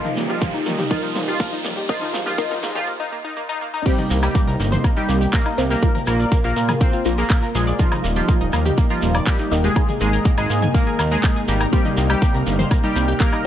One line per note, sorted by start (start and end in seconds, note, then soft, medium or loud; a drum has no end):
0.00 2.87 C3 medium
0.00 0.17 F3 medium
0.00 1.87 G3 medium
0.00 2.87 G3 medium
0.00 2.84 A#3 medium
0.00 0.89 D#4 medium
0.00 2.85 D#4 medium
0.00 0.17 F4 medium
0.00 0.89 A#4 medium
0.00 0.89 D#5 medium
0.00 riser medium
0.05 0.12 D#4 medium
0.05 closed hi-hat soft
0.05 mid tom medium
0.05 shekere soft
0.16 0.35 D#1 medium
0.16 0.22 A#3 medium
0.16 open hi-hat loud
0.16 mid tom medium
0.16 shekere medium
0.29 0.54 F3 medium
0.29 0.54 F4 medium
0.29 0.37 G4 medium
0.29 shekere soft
0.42 0.49 A#3 loud
0.42 kick loud
0.42 closed hi-hat medium
0.42 mid tom medium
0.42 shekere medium
0.54 0.63 D#1 medium
0.54 0.59 D#4 loud
0.54 closed hi-hat soft
0.54 shekere soft
0.66 0.84 D#2 medium
0.66 0.69 A#3 medium
0.66 open hi-hat loud
0.66 mid tom medium
0.66 shekere loud
0.79 0.84 G4 medium
0.79 closed hi-hat soft
0.79 mid tom medium
0.79 shekere soft
0.90 1.15 F3 medium
0.90 0.96 A#3 medium
0.90 1.87 D#4 medium
0.90 1.15 F4 medium
0.90 1.87 A#4 medium
0.90 1.87 D#5 medium
0.90 kick loud
0.90 closed hi-hat medium
0.90 mid tom medium
0.90 shekere medium
1.03 1.11 D#4 loud
1.03 closed hi-hat soft
1.03 shekere soft
1.15 1.34 D#1 loud
1.15 1.21 A#3 medium
1.15 open hi-hat loud
1.15 mid tom medium
1.15 shekere medium
1.28 1.52 F3 medium
1.28 1.52 F4 loud
1.28 1.35 G4 medium
1.28 closed hi-hat soft
1.28 shekere soft
1.40 1.48 A#3 loud
1.40 kick loud
1.40 closed hi-hat medium
1.40 mid tom medium
1.40 shekere medium
1.52 1.57 D#4 loud
1.52 closed hi-hat soft
1.52 shekere soft
1.64 1.83 D#1 loud
1.64 1.68 A#3 medium
1.64 open hi-hat loud
1.64 mid tom medium
1.64 shekere medium
1.76 1.82 G4 medium
1.76 closed hi-hat soft
1.76 shekere soft
1.88 2.87 G#2 medium
1.88 2.87 D#3 medium
1.88 2.14 F3 medium
1.88 1.94 A#3 medium
1.88 2.36 D#4 medium
1.88 2.14 F4 loud
1.88 2.36 A#4 medium
1.88 2.36 D#5 loud
1.88 kick loud
1.88 closed hi-hat medium
1.88 mid tom medium
1.88 shekere soft
2.01 2.09 D#4 loud
2.01 open hi-hat medium
2.01 mid tom medium
2.01 shekere soft
2.14 2.32 G#1 loud
2.14 2.19 A#3 medium
2.14 open hi-hat loud
2.14 mid tom loud
2.14 shekere medium
2.26 2.36 F3 medium
2.26 2.36 F4 medium
2.26 2.34 G4 medium
2.26 closed hi-hat soft
2.26 mid tom medium
2.26 shekere soft
2.38 2.63 F3 medium
2.38 2.43 A#3 medium
2.38 2.86 D#4 medium
2.38 2.63 F4 loud
2.38 2.86 A#4 medium
2.38 2.86 D#5 medium
2.38 kick loud
2.38 closed hi-hat medium
2.38 mid tom loud
2.38 shekere medium
2.51 2.60 G#1 medium
2.51 2.58 D#4 loud
2.51 closed hi-hat soft
2.51 mid tom medium
2.51 shekere soft
2.63 2.81 G#2 medium
2.63 2.68 A#3 medium
2.63 open hi-hat loud
2.63 mid tom loud
2.63 shekere medium
2.75 2.86 F3 medium
2.75 2.86 F4 loud
2.75 2.83 G4 medium
2.75 closed hi-hat soft
2.75 mid tom medium
2.75 shekere soft
2.88 2.93 A#3 medium
3.00 3.07 D#4 loud
3.12 3.17 A#3 medium
3.24 3.32 D#4 loud
3.37 3.42 A#3 medium
3.49 3.57 D#4 loud
3.61 3.66 A#3 medium
3.74 3.81 D#4 loud
3.86 5.81 C3 medium
3.86 13.47 C3 medium
3.86 5.81 G3 medium
3.86 4.10 G3 loud
3.86 4.10 G3 medium
3.86 7.75 A#3 medium
3.86 3.91 A#3 medium
3.86 13.47 A#3 medium
3.86 5.55 C4 medium
3.86 5.81 D#4 medium
3.86 5.55 G4 medium
3.86 4.10 G4 loud
3.86 3.91 A#4 medium
3.86 5.55 C5 medium
3.86 kick loud
3.86 closed hi-hat medium
3.86 crash loud
3.86 shekere soft
3.98 4.01 D#4 medium
3.98 4.01 D#5 medium
3.98 closed hi-hat soft
3.98 mid tom medium
3.98 shekere soft
4.10 4.29 C2 loud
4.10 4.16 A#3 loud
4.10 4.16 A#4 medium
4.10 open hi-hat loud
4.10 shekere loud
4.23 4.47 G3 loud
4.23 4.47 G3 medium
4.23 4.26 G4 medium
4.23 4.47 G4 loud
4.23 4.26 G5 medium
4.23 closed hi-hat soft
4.23 low woodblock soft
4.23 shekere soft
4.35 4.38 A#3 loud
4.35 4.38 A#4 medium
4.35 kick loud
4.35 closed hi-hat medium
4.35 shekere medium
4.47 4.56 C2 medium
4.47 4.53 A#4 medium
4.47 4.53 A#5 medium
4.47 closed hi-hat soft
4.47 shekere soft
4.60 4.78 G1 medium
4.60 4.65 A#3 medium
4.60 4.65 A#4 medium
4.60 open hi-hat loud
4.60 shekere medium
4.72 4.80 C5 medium
4.72 4.80 C6 medium
4.72 closed hi-hat soft
4.72 mid tom medium
4.72 shekere soft
4.84 4.89 A#3 loud
4.84 4.89 A#4 medium
4.84 kick loud
4.84 closed hi-hat medium
4.84 low woodblock medium
4.84 shekere medium
4.97 5.21 G3 loud
4.97 5.21 G3 medium
4.97 5.04 D#4 medium
4.97 5.21 G4 loud
4.97 5.04 D#5 medium
4.97 closed hi-hat soft
4.97 shekere soft
5.09 5.27 C2 medium
5.09 5.12 A#3 medium
5.09 5.12 A#4 medium
5.09 open hi-hat loud
5.09 shekere loud
5.21 5.24 G4 medium
5.21 5.24 G5 medium
5.21 closed hi-hat soft
5.21 shekere soft
5.33 5.58 A#3 loud
5.33 5.38 A#3 medium
5.33 5.58 A#3 medium
5.33 5.38 A#4 medium
5.33 5.58 A#4 loud
5.33 kick loud
5.33 clap loud
5.33 closed hi-hat medium
5.33 shekere medium
5.46 5.49 D#4 medium
5.46 5.49 D#5 medium
5.46 closed hi-hat soft
5.46 low woodblock medium
5.46 shekere soft
5.58 5.76 C2 loud
5.58 5.63 A#3 loud
5.58 5.80 C4 medium
5.58 5.80 G4 medium
5.58 5.63 A#4 medium
5.58 5.80 C5 medium
5.58 open hi-hat loud
5.58 shekere medium
5.70 5.95 A#3 medium
5.70 5.73 G4 medium
5.70 5.95 A#4 loud
5.70 5.73 G5 medium
5.70 closed hi-hat soft
5.70 shekere soft
5.82 7.03 A#3 medium
5.82 5.86 A#3 loud
5.82 7.77 F4 medium
5.82 7.03 F4 medium
5.82 7.03 A#4 medium
5.82 5.86 A#4 medium
5.82 kick loud
5.82 closed hi-hat medium
5.82 shekere medium
5.95 6.00 A#4 medium
5.95 6.00 A#5 medium
5.95 closed hi-hat soft
5.95 mid tom medium
5.95 shekere soft
6.07 6.25 A#1 loud
6.07 6.32 A#3 medium
6.07 6.12 A#3 medium
6.07 6.32 A#4 loud
6.07 6.12 A#4 medium
6.07 open hi-hat loud
6.07 low woodblock medium
6.07 shekere medium
6.20 6.27 D5 medium
6.20 6.27 D6 medium
6.20 closed hi-hat soft
6.20 shekere soft
6.32 6.37 A#3 loud
6.32 6.37 A#4 medium
6.32 kick loud
6.32 closed hi-hat medium
6.32 shekere medium
6.44 6.53 A#1 medium
6.44 6.69 A#3 loud
6.44 6.69 A#3 medium
6.44 6.52 F4 medium
6.44 6.69 A#4 loud
6.44 6.52 F5 medium
6.44 closed hi-hat soft
6.44 shekere soft
6.56 6.75 A#2 medium
6.56 6.59 A#3 medium
6.56 6.59 A#4 medium
6.56 open hi-hat loud
6.56 shekere medium
6.69 6.72 G#4 medium
6.69 6.72 G#5 medium
6.69 closed hi-hat soft
6.69 mid tom medium
6.69 low woodblock medium
6.69 shekere soft
6.80 6.86 A#3 medium
6.80 7.05 C4 medium
6.80 7.05 C4 loud
6.80 6.86 A#4 medium
6.80 7.05 C5 loud
6.80 kick loud
6.80 closed hi-hat medium
6.80 shekere soft
6.93 6.96 F4 medium
6.93 6.96 F5 medium
6.93 closed hi-hat soft
6.93 shekere soft
7.05 7.24 A#1 medium
7.05 7.11 A#3 loud
7.05 7.76 A#3 medium
7.05 7.76 F4 medium
7.05 7.11 A#4 medium
7.05 7.76 A#4 medium
7.05 open hi-hat loud
7.05 shekere loud
7.18 7.42 A#3 medium
7.18 7.42 A#3 loud
7.18 7.21 G#4 medium
7.18 7.42 A#4 loud
7.18 7.21 G#5 medium
7.18 closed hi-hat soft
7.18 shekere soft
7.30 7.33 A#3 loud
7.30 7.33 A#4 medium
7.30 kick loud
7.30 clap loud
7.30 closed hi-hat medium
7.30 low woodblock medium
7.30 shekere medium
7.42 7.48 A#4 medium
7.42 7.48 A#5 medium
7.42 closed hi-hat soft
7.42 shekere soft
7.55 7.73 A#1 loud
7.55 7.71 G#3 medium
7.55 7.60 A#3 medium
7.55 7.71 G#4 medium
7.55 7.60 A#4 medium
7.55 open hi-hat loud
7.55 shekere loud
7.67 7.75 D5 medium
7.67 7.75 D6 medium
7.67 closed hi-hat soft
7.67 shekere soft
7.79 8.04 F3 loud
7.79 8.04 F3 medium
7.79 9.74 G3 medium
7.79 13.47 A#3 medium
7.79 7.84 A#3 loud
7.79 9.74 D#4 medium
7.79 9.49 D#4 medium
7.79 8.04 F4 loud
7.79 7.84 A#4 medium
7.79 9.48 A#4 medium
7.79 9.49 D#5 loud
7.79 kick loud
7.79 closed hi-hat medium
7.79 shekere medium
7.92 7.99 D#4 medium
7.92 7.99 D#5 medium
7.92 closed hi-hat soft
7.92 mid tom medium
7.92 low woodblock medium
7.92 shekere soft
8.04 8.22 D#1 medium
8.04 8.07 A#3 medium
8.04 8.07 A#4 medium
8.04 open hi-hat loud
8.04 shekere loud
8.15 8.41 F3 loud
8.15 8.41 F3 medium
8.15 8.41 F4 medium
8.15 8.19 G4 medium
8.15 8.19 G5 medium
8.15 shekere soft
8.28 8.34 A#3 medium
8.28 8.34 A#4 medium
8.28 kick loud
8.28 closed hi-hat medium
8.28 shekere medium
8.41 8.50 D#1 medium
8.41 8.44 D#4 medium
8.41 8.44 D#5 medium
8.41 closed hi-hat soft
8.41 shekere soft
8.53 8.71 D#2 medium
8.53 8.58 A#3 loud
8.53 8.58 A#4 medium
8.53 open hi-hat loud
8.53 low woodblock medium
8.53 shekere loud
8.65 8.69 G4 medium
8.65 8.69 G5 medium
8.65 closed hi-hat soft
8.65 mid tom medium
8.65 shekere soft
8.78 8.81 A#3 loud
8.78 8.81 A#4 medium
8.78 kick loud
8.78 closed hi-hat medium
8.78 shekere medium
8.90 9.14 F3 medium
8.90 9.15 F3 loud
8.90 9.14 F4 loud
8.90 8.95 A#4 medium
8.90 8.95 A#5 medium
8.90 closed hi-hat soft
8.90 shekere soft
9.02 9.20 D#1 medium
9.02 9.07 A#3 medium
9.02 9.07 A#4 medium
9.02 open hi-hat loud
9.02 shekere loud
9.14 9.22 D5 medium
9.14 9.22 D6 medium
9.14 closed hi-hat soft
9.14 low woodblock medium
9.14 shekere soft
9.27 9.51 G3 medium
9.27 9.32 A#3 loud
9.27 9.51 G4 loud
9.27 9.32 A#4 medium
9.27 kick loud
9.27 clap loud
9.27 closed hi-hat medium
9.27 shekere medium
9.38 9.47 D#4 medium
9.38 9.47 D#5 medium
9.38 closed hi-hat soft
9.38 shekere soft
9.51 9.70 D#1 loud
9.51 9.55 A#3 medium
9.51 9.73 D#4 medium
9.51 9.73 A#4 medium
9.51 9.55 A#4 medium
9.51 9.73 D#5 medium
9.51 open hi-hat loud
9.51 shekere loud
9.64 9.88 G#3 loud
9.64 9.88 G#3 medium
9.64 9.67 G4 medium
9.64 9.88 G#4 loud
9.64 9.67 G5 medium
9.64 closed hi-hat soft
9.64 shekere soft
9.76 11.71 G#2 medium
9.76 11.71 D#3 medium
9.76 10.96 G#3 medium
9.76 9.81 A#3 medium
9.76 10.96 D#4 medium
9.76 13.47 D#4 medium
9.76 10.96 G#4 medium
9.76 9.81 A#4 medium
9.76 kick loud
9.76 closed hi-hat medium
9.76 low woodblock medium
9.76 shekere soft
9.88 9.91 G#4 medium
9.88 9.91 G#5 medium
9.88 closed hi-hat soft
9.88 mid tom medium
9.88 shekere soft
10.00 10.19 G#1 loud
10.00 10.25 G#3 medium
10.00 10.06 A#3 loud
10.00 10.25 G#4 loud
10.00 10.06 A#4 medium
10.00 open hi-hat loud
10.00 shekere medium
10.13 10.16 A#4 medium
10.13 10.16 A#5 medium
10.13 closed hi-hat soft
10.13 shekere soft
10.25 10.28 A#3 loud
10.25 10.28 A#4 medium
10.25 kick loud
10.25 closed hi-hat medium
10.25 shekere medium
10.38 10.47 G#1 medium
10.38 10.62 G#3 loud
10.38 10.62 G#3 medium
10.38 10.62 G#4 loud
10.38 10.43 D#5 medium
10.38 10.43 D#6 medium
10.38 closed hi-hat soft
10.38 low woodblock medium
10.38 shekere soft
10.50 10.68 G#2 medium
10.50 10.55 A#3 medium
10.50 10.55 A#4 medium
10.50 open hi-hat loud
10.50 shekere medium
10.62 10.70 G#5 medium
10.62 10.70 G#6 medium
10.62 closed hi-hat soft
10.62 mid tom medium
10.62 shekere soft
10.74 10.80 A#3 loud
10.74 10.99 A#3 medium
10.74 10.99 A#3 loud
10.74 10.80 A#4 medium
10.74 10.99 A#4 loud
10.74 kick loud
10.74 closed hi-hat medium
10.74 shekere soft
10.87 10.94 G#4 medium
10.87 10.94 G#5 medium
10.87 closed hi-hat soft
10.87 shekere soft
10.99 11.17 D#2 medium
10.99 11.02 A#3 medium
10.99 11.02 A#4 medium
10.99 open hi-hat loud
10.99 low woodblock medium
10.99 shekere medium
11.11 11.36 G#3 medium
11.11 11.36 G#3 loud
11.11 11.36 G#4 loud
11.11 11.14 A#4 medium
11.11 11.14 A#5 medium
11.11 closed hi-hat soft
11.11 shekere soft
11.23 11.29 A#3 medium
11.23 11.29 A#4 medium
11.23 kick loud
11.23 clap loud
11.23 closed hi-hat medium
11.23 shekere medium
11.36 11.39 G#4 medium
11.36 11.39 G#5 medium
11.36 closed hi-hat soft
11.36 shekere soft
11.48 11.66 G#1 medium
11.48 11.64 G3 medium
11.48 11.65 G3 medium
11.48 11.53 A#3 loud
11.48 11.64 G4 medium
11.48 11.53 A#4 medium
11.48 open hi-hat loud
11.48 shekere loud
11.60 11.64 A#4 medium
11.60 11.64 A#5 medium
11.60 closed hi-hat soft
11.60 low woodblock medium
11.60 shekere soft
11.73 13.47 C3 medium
11.73 11.97 G3 medium
11.73 11.97 G3 loud
11.73 13.47 G3 medium
11.73 11.78 A#3 medium
11.73 13.42 C4 medium
11.73 11.97 G4 loud
11.73 13.42 G4 medium
11.73 11.78 A#4 medium
11.73 13.42 C5 loud
11.73 kick loud
11.73 closed hi-hat medium
11.73 shekere medium
11.85 11.88 D#4 medium
11.85 11.88 D#5 medium
11.85 closed hi-hat soft
11.85 mid tom medium
11.85 shekere soft
11.97 12.16 C2 loud
11.97 12.02 A#3 loud
11.97 12.02 A#4 medium
11.97 open hi-hat loud
11.97 shekere loud
12.10 12.34 G3 medium
12.10 12.13 G4 medium
12.10 12.34 G4 loud
12.10 12.13 G5 medium
12.10 closed hi-hat soft
12.10 low woodblock medium
12.10 shekere soft
12.22 12.25 A#3 loud
12.22 12.25 A#4 medium
12.22 kick loud
12.22 closed hi-hat medium
12.22 shekere medium
12.34 12.43 C2 medium
12.34 12.39 A#4 medium
12.34 12.39 A#5 medium
12.34 closed hi-hat soft
12.34 shekere soft
12.46 12.65 G1 medium
12.46 12.52 A#3 medium
12.46 12.52 A#4 medium
12.46 open hi-hat loud
12.46 shekere medium
12.59 12.66 C5 medium
12.59 12.66 C6 medium
12.59 closed hi-hat soft
12.59 mid tom loud
12.59 shekere soft
12.71 12.76 A#3 loud
12.71 12.76 A#4 medium
12.71 kick loud
12.71 closed hi-hat medium
12.71 low woodblock medium
12.71 shekere medium
12.83 13.08 G3 loud
12.83 13.08 G3 medium
12.83 12.91 D#4 medium
12.83 13.08 G4 loud
12.83 12.91 D#5 medium
12.83 closed hi-hat soft
12.83 shekere soft
12.96 13.14 C2 medium
12.96 13.03 A#3 medium
12.96 13.03 A#4 medium
12.96 open hi-hat loud
12.96 shekere medium
13.08 13.11 G4 medium
13.08 13.11 G5 medium
13.08 closed hi-hat soft
13.08 shekere soft
13.20 13.25 A#3 medium
13.20 13.45 A#3 medium
13.20 13.45 A#4 loud
13.20 13.25 A#4 medium
13.20 kick loud
13.20 clap loud
13.20 closed hi-hat medium
13.20 shekere soft
13.33 13.36 D#4 medium
13.33 13.36 D#5 medium
13.33 closed hi-hat soft
13.33 low woodblock medium
13.33 shekere soft